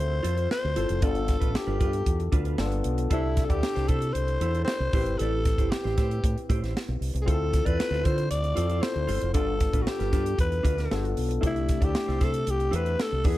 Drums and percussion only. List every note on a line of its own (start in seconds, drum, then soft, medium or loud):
0.24 closed hi-hat medium
0.37 closed hi-hat soft
0.51 snare medium
0.76 closed hi-hat medium
0.89 closed hi-hat soft
1.02 kick loud
1.02 closed hi-hat medium
1.15 closed hi-hat soft
1.28 kick medium
1.28 snare soft
1.28 closed hi-hat medium
1.42 kick medium
1.42 closed hi-hat soft
1.55 snare loud
1.81 kick medium
1.81 closed hi-hat medium
1.93 closed hi-hat soft
2.06 kick medium
2.06 closed hi-hat medium
2.20 closed hi-hat soft
2.32 kick medium
2.32 closed hi-hat medium
2.45 closed hi-hat soft
2.58 snare medium
2.72 closed hi-hat soft
2.84 closed hi-hat medium
2.98 closed hi-hat soft
3.11 kick loud
3.11 closed hi-hat medium
3.37 kick medium
3.37 snare soft
3.37 closed hi-hat medium
3.50 kick medium
3.50 closed hi-hat soft
3.63 snare loud
3.76 snare soft
3.76 closed hi-hat soft
3.88 kick medium
3.88 closed hi-hat medium
4.02 closed hi-hat soft
4.15 closed hi-hat medium
4.28 closed hi-hat soft
4.41 closed hi-hat medium
4.55 closed hi-hat soft
4.68 snare loud
4.93 kick loud
4.93 open hi-hat medium
5.06 closed hi-hat soft
5.19 closed hi-hat medium
5.45 kick medium
5.45 snare soft
5.45 closed hi-hat medium
5.58 kick medium
5.58 closed hi-hat soft
5.72 snare loud
5.86 snare soft
5.98 kick medium
5.98 snare soft
5.98 closed hi-hat medium
6.11 closed hi-hat soft
6.24 kick medium
6.24 closed hi-hat medium
6.38 closed hi-hat soft
6.50 kick medium
6.50 closed hi-hat medium
6.64 snare soft
6.64 closed hi-hat soft
6.77 snare loud
7.02 open hi-hat medium
7.16 closed hi-hat soft
7.28 kick loud
7.28 closed hi-hat medium
7.53 kick medium
7.53 snare soft
7.53 closed hi-hat medium
7.66 kick medium
7.66 closed hi-hat soft
7.80 snare loud
7.93 snare soft
8.05 kick medium
8.05 closed hi-hat medium
8.18 closed hi-hat soft
8.31 closed hi-hat medium
8.44 closed hi-hat soft
8.57 closed hi-hat medium
8.70 closed hi-hat soft
8.83 snare loud
9.08 open hi-hat medium
9.22 closed hi-hat soft
9.34 kick loud
9.34 closed hi-hat medium
9.60 kick medium
9.60 snare soft
9.60 closed hi-hat medium
9.73 kick medium
9.73 closed hi-hat soft
9.87 snare loud
10.00 snare soft
10.00 closed hi-hat soft
10.13 kick medium
10.13 snare soft
10.13 closed hi-hat medium
10.26 closed hi-hat soft
10.39 kick medium
10.39 closed hi-hat medium
10.52 closed hi-hat soft
10.65 kick medium
10.65 closed hi-hat medium
10.78 snare soft
10.78 closed hi-hat soft
10.91 snare medium
11.05 closed hi-hat soft
11.17 open hi-hat medium
11.31 closed hi-hat soft
11.43 kick loud
11.43 closed hi-hat medium
11.56 closed hi-hat soft
11.69 kick medium
11.69 snare soft
11.69 closed hi-hat medium
11.82 kick medium
11.82 closed hi-hat soft
11.95 snare loud
12.09 snare soft
12.21 kick medium
12.21 snare soft
12.21 closed hi-hat medium
12.34 closed hi-hat soft
12.47 closed hi-hat medium
12.60 closed hi-hat soft
12.73 closed hi-hat medium
12.86 closed hi-hat soft
13.00 snare loud
13.24 kick loud
13.24 open hi-hat medium